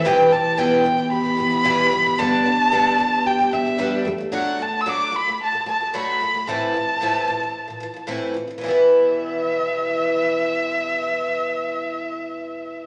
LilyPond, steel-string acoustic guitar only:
\new Staff \with { instrumentName = "Steel-string acoustic guitar" } { \time 4/4 \key e \minor \tempo 4 = 112 e8 e'8 b8 e'8 g'8 b8 g'8 b8 | b8 d'8 b8 d'8 g'8 b8 g'8 a8 | r1 | r1 |
r1 | r1 | }